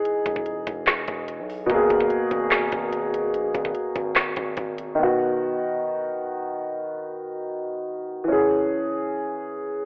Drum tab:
HH |x-x-x-x-x-x-x-o-|x-x-x-x-x-x-x-x-|x-x-x-x-x-x-x-x-|----------------|
CP |--------x-------|--------x-------|--------x-------|----------------|
SD |--------o-------|--------o-------|--------o-------|----------------|
BD |--oo--o---o-----|o-oo--o---o-----|--oo--o---o-o---|----------------|

HH |----------------|----------------|
CP |----------------|----------------|
SD |----------------|----------------|
BD |----------------|----------------|